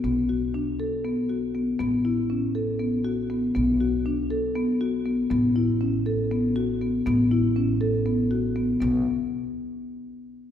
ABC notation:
X:1
M:7/8
L:1/8
Q:1/4=120
K:Amix
V:1 name="Marimba"
B, F D A B, F B, | B, E C A B, F B, | B, F D A B, F B, | B, E C A B, F B, |
B, E C A B, F B, | B, z6 |]
V:2 name="Upright bass" clef=bass
B,,,6- B,,, | A,,,6- A,,, | B,,,6- B,,, | A,,,6- A,,, |
A,,,6- A,,, | B,,, z6 |]